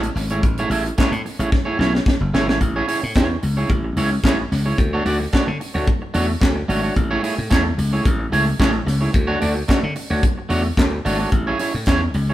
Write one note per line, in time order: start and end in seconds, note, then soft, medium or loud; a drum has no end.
0.03 muted clean electric guitar stroke soft
0.03 closed hi-hat medium
0.15 0.43 G#1 loud
0.15 muted clean electric guitar stroke soft
0.15 snare soft
0.15 open hi-hat medium
0.30 0.42 A3 medium
0.30 0.43 E4 medium
0.30 0.43 G#4 medium
0.30 0.43 C#5 medium
0.30 closed hi-hat medium
0.43 0.63 A1 loud
0.43 muted clean electric guitar stroke soft
0.43 kick loud
0.43 closed hi-hat medium
0.58 0.70 A3 medium
0.58 0.70 E4 medium
0.58 0.70 G#4 medium
0.58 0.71 C#5 medium
0.58 closed hi-hat medium
0.70 0.90 A1 loud
0.70 0.84 A3 medium
0.70 0.84 E4 medium
0.70 0.85 G#4 medium
0.70 0.85 E5 medium
0.70 open hi-hat medium
0.85 muted clean electric guitar stroke soft
0.85 closed hi-hat soft
0.98 1.15 A3 medium
0.98 1.13 E4 medium
0.98 1.12 G#4 medium
0.98 1.11 C#5 medium
0.98 muted slap bass stroke medium
0.98 kick loud
0.98 snare loud
0.98 clap loud
0.98 closed hi-hat medium
1.11 1.21 A2 medium
1.11 muted clean electric guitar stroke soft
1.11 closed hi-hat soft
1.25 muted clean electric guitar stroke soft
1.25 open hi-hat medium
1.39 1.49 A1 medium
1.39 1.51 A3 soft
1.39 1.51 E4 medium
1.39 1.52 G#4 medium
1.39 1.51 C#5 medium
1.39 closed hi-hat soft
1.52 muted clean electric guitar stroke soft
1.52 kick loud
1.52 snare medium
1.65 1.78 A3 medium
1.65 1.79 E4 medium
1.65 1.79 G#4 medium
1.65 1.79 C#5 medium
1.79 1.99 B1 medium
1.79 1.93 A3 medium
1.79 1.93 E4 medium
1.79 1.93 G#4 medium
1.79 1.93 C#5 medium
1.79 snare medium
1.95 muted clean electric guitar stroke soft
1.95 snare medium
2.06 muted clean electric guitar stroke soft
2.06 kick loud
2.06 snare loud
2.20 2.30 F#1 medium
2.20 muted clean electric guitar stroke soft
2.34 2.49 G1 medium
2.34 2.49 A3 medium
2.34 2.49 E4 medium
2.34 2.48 G#4 medium
2.34 2.48 C#5 medium
2.34 snare loud
2.49 2.58 G#1 medium
2.49 2.61 A3 soft
2.49 2.60 E4 medium
2.49 2.60 G#4 soft
2.49 2.60 C#5 medium
2.49 snare medium
2.61 2.81 A1 loud
2.61 muted clean electric guitar stroke soft
2.61 kick medium
2.61 closed hi-hat medium
2.76 2.86 C#4 medium
2.76 2.87 E4 medium
2.76 2.87 G#4 medium
2.76 2.87 C#5 medium
2.88 3.01 C#4 medium
2.88 3.01 E4 medium
2.88 3.02 G#4 medium
2.88 3.01 C#5 medium
2.88 open hi-hat medium
3.03 3.12 A2 medium
3.03 muted clean electric guitar stroke soft
3.15 3.35 E2 loud
3.15 3.36 C#4 medium
3.15 3.30 E4 medium
3.15 3.29 G#4 medium
3.15 3.29 C#5 medium
3.15 kick loud
3.15 snare loud
3.15 clap medium
3.15 closed hi-hat medium
3.30 muted clean electric guitar stroke medium
3.43 3.63 C#2 medium
3.43 muted clean electric guitar stroke soft
3.43 open hi-hat medium
3.57 3.70 C#4 medium
3.57 3.69 E4 medium
3.57 3.69 G#4 medium
3.57 3.69 C#5 medium
3.70 3.89 A1 medium
3.70 kick loud
3.70 closed hi-hat medium
3.84 muted clean electric guitar stroke soft
3.96 4.16 C#2 medium
3.96 4.14 C#4 medium
3.96 4.11 E4 loud
3.96 4.11 G#4 medium
3.96 4.11 C#5 loud
3.96 open hi-hat medium
4.12 muted clean electric guitar stroke soft
4.23 4.43 A1 loud
4.23 4.41 C#4 medium
4.23 4.39 E4 medium
4.23 4.38 G#4 medium
4.23 4.38 C#5 loud
4.23 kick loud
4.23 snare loud
4.23 clap loud
4.23 closed hi-hat medium
4.39 muted clean electric guitar stroke soft
4.52 4.71 C#2 medium
4.52 muted clean electric guitar stroke soft
4.52 snare soft
4.52 open hi-hat medium
4.66 4.78 C#4 soft
4.66 4.78 E4 soft
4.66 4.78 G#4 medium
4.66 4.78 C#5 medium
4.78 4.98 D2 loud
4.78 muted clean electric guitar stroke soft
4.78 kick loud
4.78 closed hi-hat medium
4.93 5.04 A3 medium
4.93 5.05 D4 medium
4.93 5.04 F#4 medium
4.93 5.06 C#5 medium
5.05 5.25 D2 medium
5.05 5.19 A3 medium
5.05 5.19 D4 medium
5.05 5.19 F#4 medium
5.05 5.19 D5 medium
5.05 open hi-hat medium
5.20 muted clean electric guitar stroke soft
5.32 5.50 A3 medium
5.32 5.46 D4 medium
5.32 5.46 F#4 medium
5.32 5.46 C#5 loud
5.32 muted slap bass stroke soft
5.32 kick loud
5.32 snare loud
5.32 clap medium
5.32 closed hi-hat medium
5.47 5.57 D3 loud
5.47 muted clean electric guitar stroke medium
5.60 muted clean electric guitar stroke soft
5.60 open hi-hat medium
5.74 5.84 D2 medium
5.74 5.87 A3 medium
5.74 5.87 D4 medium
5.74 5.86 F#4 medium
5.74 5.86 C#5 medium
5.87 kick loud
5.87 closed hi-hat medium
6.02 muted clean electric guitar stroke medium
6.14 6.34 E2 loud
6.14 6.31 A3 medium
6.14 6.28 D4 medium
6.14 6.27 F#4 loud
6.14 6.27 C#5 loud
6.14 open hi-hat medium
6.28 muted clean electric guitar stroke medium
6.41 6.62 D2 medium
6.41 muted clean electric guitar stroke medium
6.41 kick loud
6.41 snare loud
6.41 clap loud
6.41 closed hi-hat medium
6.56 muted clean electric guitar stroke soft
6.68 6.89 G#1 loud
6.68 6.83 A3 medium
6.68 6.83 D4 medium
6.68 6.82 F#4 medium
6.68 6.82 C#5 medium
6.68 open hi-hat medium
6.83 6.95 A3 medium
6.83 6.96 D4 medium
6.83 6.95 F#4 medium
6.83 6.95 C#5 medium
6.96 7.16 A1 loud
6.96 muted clean electric guitar stroke soft
6.96 kick loud
6.96 closed hi-hat medium
7.11 7.21 A3 medium
7.11 7.22 E4 medium
7.11 7.23 G#4 medium
7.11 7.23 C#5 medium
7.23 7.36 A3 medium
7.23 7.37 E4 medium
7.23 7.37 G#4 medium
7.23 7.36 C#5 medium
7.23 open hi-hat medium
7.37 7.48 A2 medium
7.37 muted clean electric guitar stroke medium
7.50 7.71 E2 loud
7.50 7.67 A3 medium
7.50 7.65 E4 medium
7.50 7.64 G#4 medium
7.50 7.64 C#5 medium
7.50 kick loud
7.50 snare loud
7.50 clap loud
7.50 closed hi-hat medium
7.65 muted clean electric guitar stroke soft
7.78 7.98 C#2 medium
7.78 muted clean electric guitar stroke soft
7.78 open hi-hat medium
7.93 8.05 A3 medium
7.93 8.05 E4 medium
7.93 8.05 G#4 medium
7.93 8.05 C#5 medium
8.05 8.25 A1 loud
8.05 kick loud
8.05 closed hi-hat medium
8.19 muted clean electric guitar stroke medium
8.32 8.52 C#2 loud
8.32 8.49 A3 medium
8.32 8.47 E4 medium
8.32 8.47 G#4 medium
8.32 8.46 C#5 loud
8.32 open hi-hat medium
8.47 muted clean electric guitar stroke soft
8.60 8.80 A1 medium
8.60 8.77 A3 medium
8.60 8.73 E4 medium
8.60 8.73 G#4 loud
8.60 8.72 C#5 loud
8.60 kick loud
8.60 snare loud
8.60 clap medium
8.60 closed hi-hat medium
8.74 muted clean electric guitar stroke soft
8.86 9.06 C#2 loud
8.86 muted clean electric guitar stroke soft
8.86 snare soft
8.86 open hi-hat medium
9.01 9.11 A3 soft
9.01 9.13 E4 medium
9.01 9.13 G#4 medium
9.01 9.12 C#5 medium
9.13 9.34 D2 loud
9.13 muted clean electric guitar stroke soft
9.13 kick loud
9.13 closed hi-hat medium
9.27 9.39 A3 medium
9.27 9.40 D4 medium
9.27 9.40 F#4 medium
9.27 9.41 C#5 medium
9.40 9.62 D2 medium
9.40 9.54 A3 medium
9.40 9.55 D4 medium
9.40 9.55 F#4 medium
9.40 9.55 D5 medium
9.40 open hi-hat medium
9.55 muted clean electric guitar stroke soft
9.68 9.85 A3 medium
9.68 9.82 D4 medium
9.68 9.81 F#4 medium
9.68 9.81 C#5 medium
9.68 muted slap bass stroke medium
9.68 kick loud
9.68 snare loud
9.68 clap medium
9.68 closed hi-hat medium
9.82 9.93 D3 medium
9.82 muted clean electric guitar stroke soft
9.96 muted clean electric guitar stroke soft
9.96 open hi-hat medium
10.10 10.20 D2 medium
10.10 10.23 A3 medium
10.10 10.23 D4 medium
10.10 10.23 F#4 medium
10.10 10.22 C#5 medium
10.23 kick loud
10.23 closed hi-hat medium
10.38 muted clean electric guitar stroke soft
10.49 10.70 E2 medium
10.49 10.67 A3 medium
10.49 10.64 D4 medium
10.49 10.63 F#4 loud
10.49 10.63 C#5 loud
10.49 open hi-hat medium
10.64 muted clean electric guitar stroke soft
10.77 10.97 D2 medium
10.77 muted clean electric guitar stroke soft
10.77 kick loud
10.77 snare loud
10.77 clap loud
10.77 closed hi-hat medium
10.92 muted clean electric guitar stroke soft
11.05 11.25 G#1 medium
11.05 11.20 A3 medium
11.05 11.19 D4 medium
11.05 11.19 F#4 medium
11.05 11.18 C#5 medium
11.05 open hi-hat medium
11.19 11.32 A3 soft
11.19 11.32 D4 medium
11.19 11.32 F#4 medium
11.19 11.31 C#5 medium
11.32 11.52 A1 loud
11.32 muted clean electric guitar stroke soft
11.32 kick loud
11.32 closed hi-hat medium
11.47 11.58 C#4 medium
11.47 11.59 E4 medium
11.47 11.60 G#4 medium
11.47 11.59 C#5 medium
11.59 11.73 C#4 medium
11.59 11.73 E4 medium
11.59 11.74 G#4 medium
11.59 11.73 C#5 medium
11.59 open hi-hat medium
11.74 11.84 A2 medium
11.74 muted clean electric guitar stroke soft
11.86 12.07 E2 loud
11.86 12.04 C#4 medium
11.86 12.03 E4 medium
11.86 12.02 G#4 medium
11.86 12.02 C#5 loud
11.86 kick loud
11.86 snare loud
11.86 clap medium
11.86 closed hi-hat medium
12.03 muted clean electric guitar stroke medium
12.14 12.34 C#2 loud
12.14 muted clean electric guitar stroke soft
12.14 open hi-hat medium
12.30 12.34 C#4 medium
12.30 12.34 E4 medium
12.30 12.34 G#4 medium
12.30 12.34 C#5 medium